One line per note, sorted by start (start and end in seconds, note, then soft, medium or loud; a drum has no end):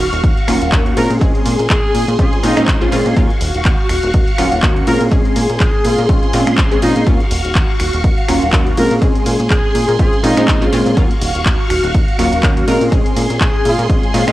0.00 0.11 D#1 medium
0.00 0.95 F#4 medium
0.00 0.95 F5 medium
0.00 0.95 C#6 medium
0.13 0.22 D#1 loud
0.13 closed hi-hat medium
0.24 0.35 D#2 medium
0.24 kick loud
0.24 closed hi-hat medium
0.38 closed hi-hat soft
0.48 0.59 D#1 medium
0.48 0.70 F#3 medium
0.48 0.70 A#3 medium
0.48 0.70 C#4 medium
0.48 0.70 F4 medium
0.48 finger snap medium
0.48 open hi-hat loud
0.48 ride medium
0.62 0.71 D#1 medium
0.62 closed hi-hat medium
0.72 0.93 D#2 medium
0.72 0.94 F#3 medium
0.72 0.94 A#3 medium
0.72 0.94 C#4 medium
0.72 0.94 F#4 loud
0.72 kick loud
0.72 clap loud
0.72 closed hi-hat medium
0.86 closed hi-hat soft
0.97 1.08 A#2 medium
0.97 1.19 G#3 medium
0.97 1.19 C4 medium
0.97 1.19 C#4 medium
0.97 1.19 F4 medium
0.97 3.14 G#4 medium
0.97 1.13 A#4 loud
0.97 3.14 C6 medium
0.97 open hi-hat loud
0.97 ride medium
1.10 1.19 A#2 medium
1.10 closed hi-hat medium
1.21 1.33 A#1 medium
1.21 2.16 G#3 medium
1.21 2.16 C4 medium
1.21 2.16 C#4 medium
1.21 2.17 G#4 medium
1.21 kick loud
1.21 closed hi-hat medium
1.35 closed hi-hat soft
1.46 1.57 A#2 loud
1.46 open hi-hat loud
1.46 ride medium
1.59 1.68 A#2 medium
1.59 closed hi-hat medium
1.70 1.81 A#1 medium
1.70 2.08 G#4 medium
1.70 kick loud
1.70 clap loud
1.70 closed hi-hat medium
1.94 2.06 A#2 medium
1.94 open hi-hat loud
1.94 ride medium
2.08 2.17 A#2 loud
2.08 closed hi-hat medium
2.19 2.30 A#1 medium
2.19 2.41 G#3 medium
2.19 2.41 C4 medium
2.19 2.41 C#4 medium
2.19 2.41 F4 medium
2.19 2.35 G#4 medium
2.19 kick loud
2.19 closed hi-hat medium
2.33 closed hi-hat soft
2.43 2.55 A#2 loud
2.43 2.55 G#3 medium
2.43 2.55 C4 medium
2.43 2.55 C#4 medium
2.43 2.81 D#4 medium
2.43 2.55 F4 loud
2.43 open hi-hat loud
2.43 ride medium
2.57 2.66 A#2 medium
2.57 2.78 G#3 loud
2.57 2.78 C4 medium
2.57 2.78 C#4 medium
2.57 2.78 D#4 loud
2.57 finger snap medium
2.57 closed hi-hat medium
2.68 2.88 A#1 medium
2.68 kick loud
2.68 clap loud
2.68 closed hi-hat medium
2.81 2.89 G#3 loud
2.81 2.89 C4 medium
2.81 2.90 C#4 medium
2.81 2.90 F4 loud
2.81 closed hi-hat soft
2.92 3.03 A#2 medium
2.92 3.14 G#3 loud
2.92 3.14 C4 medium
2.92 3.14 C#4 medium
2.92 3.14 F4 loud
2.92 open hi-hat loud
2.92 ride medium
3.06 3.15 A#2 medium
3.06 closed hi-hat medium
3.16 3.28 D#2 loud
3.16 3.30 F#3 loud
3.16 3.30 A#3 loud
3.16 3.30 C#4 medium
3.16 3.30 F4 loud
3.16 4.85 F#4 medium
3.16 4.86 F5 medium
3.16 4.85 C#6 medium
3.16 kick loud
3.16 closed hi-hat medium
3.30 closed hi-hat soft
3.41 3.52 D#1 loud
3.41 open hi-hat loud
3.41 ride medium
3.54 3.63 D#1 medium
3.54 closed hi-hat medium
3.65 3.76 D#2 medium
3.65 kick loud
3.65 clap loud
3.65 closed hi-hat medium
3.89 4.01 D#1 medium
3.89 finger snap medium
3.89 open hi-hat loud
3.89 ride medium
4.03 4.12 D#1 loud
4.03 closed hi-hat medium
4.14 4.25 D#2 medium
4.14 kick loud
4.14 closed hi-hat medium
4.27 closed hi-hat soft
4.38 4.50 D#1 loud
4.38 4.60 F#3 medium
4.38 4.60 A#3 medium
4.38 4.60 C#4 medium
4.38 4.60 F4 medium
4.38 finger snap medium
4.38 open hi-hat loud
4.38 ride medium
4.52 4.61 D#1 medium
4.52 closed hi-hat medium
4.62 4.83 D#2 medium
4.62 4.84 F#3 medium
4.62 4.85 A#3 medium
4.62 4.85 C#4 medium
4.62 4.85 F#4 medium
4.62 kick loud
4.62 clap loud
4.62 closed hi-hat medium
4.76 closed hi-hat soft
4.87 4.98 A#2 medium
4.87 5.09 G#3 medium
4.87 5.09 C4 medium
4.87 5.09 C#4 medium
4.87 5.09 F4 medium
4.87 7.05 G#4 medium
4.87 5.03 A#4 medium
4.87 7.05 C6 medium
4.87 open hi-hat loud
4.87 ride medium
5.01 5.10 A#2 loud
5.01 closed hi-hat medium
5.11 5.23 A#1 loud
5.11 6.06 G#3 medium
5.11 6.06 C4 medium
5.11 6.07 C#4 medium
5.11 6.07 G#4 loud
5.11 kick loud
5.11 closed hi-hat medium
5.25 closed hi-hat soft
5.36 5.47 A#2 medium
5.36 open hi-hat loud
5.36 ride medium
5.50 5.58 A#2 medium
5.50 closed hi-hat medium
5.60 5.72 A#1 medium
5.60 5.98 G#4 medium
5.60 kick loud
5.60 clap loud
5.60 closed hi-hat medium
5.85 5.96 A#2 medium
5.85 6.00 F4 medium
5.85 open hi-hat loud
5.85 ride medium
5.98 6.07 A#2 loud
5.98 closed hi-hat soft
6.09 6.20 A#1 loud
6.09 6.31 G#3 medium
6.09 6.31 C4 medium
6.09 6.31 C#4 medium
6.09 6.31 F4 medium
6.09 kick loud
6.09 closed hi-hat medium
6.23 closed hi-hat soft
6.33 6.45 A#2 loud
6.33 6.68 G#3 medium
6.33 6.68 C4 medium
6.33 6.68 C#4 medium
6.33 6.69 F4 loud
6.33 open hi-hat loud
6.33 ride medium
6.47 6.56 A#2 medium
6.47 finger snap medium
6.47 closed hi-hat medium
6.58 6.78 A#1 medium
6.58 kick loud
6.58 clap loud
6.58 closed hi-hat medium
6.71 6.81 G#3 medium
6.71 6.81 C4 medium
6.71 6.81 C#4 medium
6.71 6.81 G#4 loud
6.71 closed hi-hat soft
6.82 6.94 A#2 medium
6.82 7.02 G#3 medium
6.82 7.02 C4 medium
6.82 7.02 C#4 medium
6.82 6.91 D#4 medium
6.82 7.02 F4 medium
6.82 open hi-hat loud
6.82 ride medium
6.96 7.05 A#2 medium
6.96 7.03 D#4 medium
6.96 closed hi-hat soft
7.06 7.18 D#2 medium
7.06 7.20 F#3 loud
7.06 7.20 A#3 medium
7.06 7.20 C#4 medium
7.06 7.20 F4 loud
7.06 8.76 F#4 medium
7.06 8.76 F5 medium
7.06 8.76 C#6 medium
7.06 kick loud
7.06 closed hi-hat medium
7.20 closed hi-hat soft
7.31 7.42 D#1 medium
7.31 open hi-hat loud
7.31 ride medium
7.45 7.54 D#1 medium
7.45 closed hi-hat medium
7.55 7.67 D#2 medium
7.55 kick loud
7.55 clap loud
7.55 closed hi-hat medium
7.80 7.91 D#1 medium
7.80 finger snap medium
7.80 open hi-hat loud
7.80 ride medium
7.93 8.02 D#1 loud
7.93 closed hi-hat medium
8.04 8.15 D#2 medium
8.04 kick loud
8.04 closed hi-hat medium
8.18 closed hi-hat soft
8.28 8.40 D#1 loud
8.28 8.50 F#3 medium
8.28 8.50 A#3 medium
8.28 8.51 C#4 medium
8.28 8.51 F4 medium
8.28 finger snap medium
8.28 open hi-hat loud
8.28 ride medium
8.42 8.51 D#1 medium
8.42 closed hi-hat medium
8.53 8.74 D#2 medium
8.53 8.75 F#3 medium
8.53 8.75 A#3 medium
8.53 8.75 C#4 medium
8.53 8.75 F#4 medium
8.53 kick loud
8.53 clap loud
8.53 closed hi-hat medium
8.67 closed hi-hat soft
8.77 8.89 A#2 medium
8.77 8.99 G#3 medium
8.77 8.99 C4 medium
8.77 8.99 C#4 medium
8.77 8.99 F4 medium
8.77 10.95 G#4 medium
8.77 8.93 A#4 loud
8.77 10.95 C6 medium
8.77 open hi-hat loud
8.77 ride medium
8.91 9.00 A#2 medium
8.91 closed hi-hat soft
9.01 9.13 A#1 loud
9.01 9.96 G#3 medium
9.01 9.97 C4 medium
9.01 9.97 C#4 medium
9.01 9.97 G#4 medium
9.01 kick loud
9.01 closed hi-hat medium
9.15 closed hi-hat soft
9.26 9.37 A#2 loud
9.26 open hi-hat loud
9.26 ride medium
9.40 9.49 A#2 medium
9.40 closed hi-hat medium
9.50 9.62 A#1 medium
9.50 9.89 G#4 loud
9.50 kick loud
9.50 clap loud
9.50 closed hi-hat medium
9.75 9.86 A#2 medium
9.75 open hi-hat loud
9.75 ride medium
9.89 9.97 A#2 loud
9.89 closed hi-hat medium
9.99 10.11 A#1 medium
9.99 10.21 G#3 medium
9.99 10.21 C4 medium
9.99 10.21 C#4 medium
9.99 10.21 F4 medium
9.99 10.15 G#4 loud
9.99 kick loud
9.99 closed hi-hat medium
10.13 closed hi-hat soft
10.23 10.35 A#2 medium
10.23 10.35 G#3 medium
10.23 10.35 C4 medium
10.23 10.35 C#4 medium
10.23 10.62 D#4 medium
10.23 10.36 F4 medium
10.23 open hi-hat loud
10.23 ride medium
10.37 10.46 A#2 medium
10.37 10.58 G#3 loud
10.37 10.58 C4 medium
10.37 10.59 C#4 medium
10.37 10.59 D#4 loud
10.37 finger snap medium
10.37 closed hi-hat medium
10.48 10.69 A#1 medium
10.48 kick loud
10.48 clap loud
10.48 closed hi-hat medium
10.61 10.70 G#3 loud
10.61 10.70 C4 medium
10.61 10.70 C#4 medium
10.61 10.70 F4 loud
10.61 closed hi-hat soft
10.72 10.84 A#2 medium
10.72 10.94 G#3 loud
10.72 10.94 C4 medium
10.72 10.94 C#4 medium
10.72 10.95 F4 loud
10.72 open hi-hat loud
10.72 ride medium
10.86 10.95 A#2 medium
10.86 closed hi-hat medium
10.96 11.08 D#2 loud
10.96 11.10 F#3 loud
10.96 11.10 A#3 medium
10.96 11.10 C#4 medium
10.96 11.10 F4 loud
10.96 12.66 F#4 medium
10.96 12.66 F5 medium
10.96 12.66 C#6 medium
10.96 kick loud
10.96 closed hi-hat medium
11.11 closed hi-hat soft
11.21 11.32 D#1 loud
11.21 open hi-hat loud
11.21 ride medium
11.35 11.44 D#1 medium
11.35 closed hi-hat medium
11.46 11.57 D#2 medium
11.46 kick loud
11.46 clap loud
11.46 closed hi-hat medium
11.70 11.81 D#1 medium
11.70 finger snap medium
11.70 open hi-hat loud
11.70 ride medium
11.84 11.92 D#1 loud
11.84 closed hi-hat medium
11.94 12.06 D#2 medium
11.94 kick loud
11.94 closed hi-hat medium
12.08 closed hi-hat soft
12.18 12.30 D#1 medium
12.18 12.40 F#3 medium
12.18 12.41 A#3 medium
12.18 12.41 C#4 medium
12.18 12.41 F4 medium
12.18 finger snap medium
12.18 open hi-hat loud
12.18 ride medium
12.32 12.41 D#1 medium
12.32 closed hi-hat medium
12.43 12.64 D#2 loud
12.43 12.65 F#3 medium
12.43 12.65 A#3 medium
12.43 12.65 C#4 medium
12.43 12.65 F#4 loud
12.43 kick loud
12.43 clap loud
12.43 closed hi-hat medium
12.57 closed hi-hat soft
12.67 12.79 A#2 medium
12.67 12.89 G#3 medium
12.67 12.89 C4 medium
12.67 12.90 C#4 medium
12.67 12.90 F4 medium
12.67 14.32 G#4 medium
12.67 12.83 A#4 loud
12.67 14.32 C6 medium
12.67 open hi-hat loud
12.67 ride medium
12.81 12.90 A#2 loud
12.81 closed hi-hat medium
12.91 13.03 A#1 loud
12.91 13.87 G#3 medium
12.91 13.87 C4 medium
12.91 13.87 C#4 medium
12.91 13.87 G#4 loud
12.91 kick loud
12.91 closed hi-hat medium
13.06 closed hi-hat soft
13.16 13.28 A#2 loud
13.16 open hi-hat loud
13.16 ride medium
13.30 13.39 A#2 medium
13.30 closed hi-hat medium
13.41 13.52 A#1 medium
13.41 13.79 G#4 medium
13.41 kick loud
13.41 clap loud
13.41 closed hi-hat medium
13.65 13.76 A#2 medium
13.65 13.81 F4 medium
13.65 open hi-hat loud
13.65 ride medium
13.79 13.88 A#2 loud
13.79 closed hi-hat medium
13.89 14.01 A#1 medium
13.89 14.11 G#3 medium
13.89 14.11 C4 medium
13.89 14.11 C#4 medium
13.89 14.12 F4 medium
13.89 kick loud
13.89 closed hi-hat medium
14.03 closed hi-hat soft
14.14 14.25 A#2 loud
14.14 14.25 G#3 medium
14.14 14.26 C4 medium
14.14 14.26 C#4 medium
14.14 14.26 F4 loud
14.14 open hi-hat loud
14.14 ride medium
14.27 14.32 A#2 medium
14.27 14.32 G#3 loud
14.27 14.32 C4 medium
14.27 14.32 C#4 medium
14.27 14.32 D#4 loud
14.27 finger snap medium
14.27 closed hi-hat medium